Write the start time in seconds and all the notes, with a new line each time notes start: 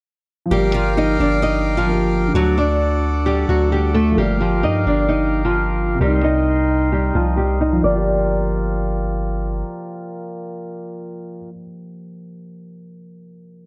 0.46 F3
0.51 G1 G3 A#3 G4 A#4 F5 G5 D6
0.57 G4
0.74 F3 F4
0.97 D#4 D#5
1.20 G1 D4 D5
1.42 D#4 D#5
1.77 F3 F4
1.86 F3 A#3
1.92 G4
2.28 D3
2.34 D2 F#3 A3 F#4 A4 D5 F#5
2.40 F#4
2.58 D4 D5
3.26 G3 G4
3.49 D2 F#3 F#4
3.69 D3 G3 A3 G4
3.75 F#4
3.94 A3 A4
4.11 F3
4.17 G1 G3 A#3 G4 A#4 F5 G5
4.23 G4
4.41 F3 F4
4.63 G2 D#4 D#5
4.86 G1 D4 D5
5.09 D#4 D#5
5.45 F3 F4
5.95 C3
6.00 C2 G3 A#3 G4 A#4 D#5 G5 C6
6.06 D#4
6.24 D#4 D#5
6.92 G3 G4
7.15 C2 F3 F4
7.37 G3 G4
7.61 D#4 D#5
7.72 F3
7.84 G1 A#3 F4 A#4 D5 G5
7.96 G4